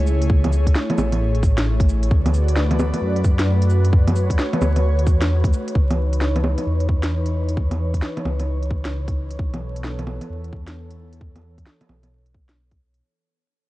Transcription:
Already playing: C#2 A3 E4 G#4 C#5
0.07 cabasa
0.22 closed hi-hat
0.30 kick
0.44 closed hi-hat, low bongo
0.53 cabasa
0.67 kick, closed hi-hat
0.75 snare
0.90 closed hi-hat, low bongo
0.98 A1, low bongo, cabasa
1.12 closed hi-hat, low bongo
1.35 closed hi-hat
1.43 kick, cabasa
1.58 snare, closed hi-hat
1.80 kick, closed hi-hat
1.89 cabasa
2.03 closed hi-hat
2.11 D2 F#4 B4 D5, kick
2.26 closed hi-hat, low bongo
2.34 cabasa
2.48 closed hi-hat
2.56 snare
2.71 closed hi-hat, low bongo
2.79 low bongo, cabasa
2.94 closed hi-hat, low bongo
3.02 F#2
3.16 closed hi-hat
3.24 kick, cabasa
3.39 snare, closed hi-hat
3.62 closed hi-hat
3.70 cabasa
3.85 closed hi-hat
3.92 C#5, kick
4.07 closed hi-hat, low bongo
4.16 cabasa
4.30 kick, closed hi-hat
4.39 snare
4.53 closed hi-hat, low bongo
4.61 D2, low bongo, cabasa
4.76 closed hi-hat, low bongo
4.99 closed hi-hat
5.07 E2, kick, cabasa
5.21 snare, closed hi-hat
5.44 kick, closed hi-hat
5.53 cabasa
5.68 closed hi-hat
5.75 C#2 E3 D#4 B4 C#5, kick
5.90 closed hi-hat, low bongo
6.13 closed hi-hat
6.21 snare
6.36 closed hi-hat, low bongo
6.44 low bongo
6.58 closed hi-hat, low bongo
6.67 E2
6.80 closed hi-hat
6.89 kick
7.03 snare, closed hi-hat
7.26 closed hi-hat
7.49 closed hi-hat
7.57 kick
7.71 closed hi-hat, low bongo
7.94 kick, closed hi-hat
8.02 snare
8.17 closed hi-hat, low bongo
8.25 C#2, low bongo
8.40 closed hi-hat, low bongo
8.63 closed hi-hat
8.71 kick
8.85 snare, closed hi-hat
9.08 kick, closed hi-hat
9.30 closed hi-hat
9.39 B1 E3 B3 A4, kick
9.54 closed hi-hat, low bongo
9.76 closed hi-hat
9.84 snare
9.99 closed hi-hat, low bongo
10.07 low bongo
10.21 closed hi-hat, low bongo
10.30 E2
10.44 closed hi-hat
10.53 kick
10.67 snare, closed hi-hat
10.90 closed hi-hat
11.13 closed hi-hat
11.21 kick
11.36 closed hi-hat, low bongo
11.58 kick, closed hi-hat
11.66 snare
11.81 closed hi-hat, low bongo
11.89 B1, low bongo
12.03 closed hi-hat, low bongo
12.26 closed hi-hat
12.34 kick
12.49 snare, closed hi-hat
12.71 kick, closed hi-hat
12.94 closed hi-hat

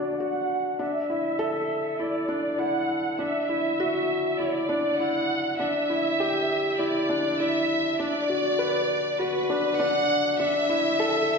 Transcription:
Already playing: D4 F#4 B4 D5
0.19 F#4 F#5
0.79 D4 E5
1.10 E4
1.39 A4
1.99 E4 D5
2.28 D4
2.59 E4 F#5
3.19 D4 E5
3.49 E4
3.80 F#4
4.39 E4 D5
4.47 C#5
4.52 D5
4.69 D4
4.98 E4 F#5
5.59 D4 E5
5.90 E4
6.20 G4
6.78 E4 D5
7.09 D4
7.39 E4 E5
7.99 D4 D5
8.29 F#4
8.59 B4
9.18 F#4 B4
9.50 D4
9.78 D4 F#5
10.38 D4 E5
10.69 E4
11.00 A4

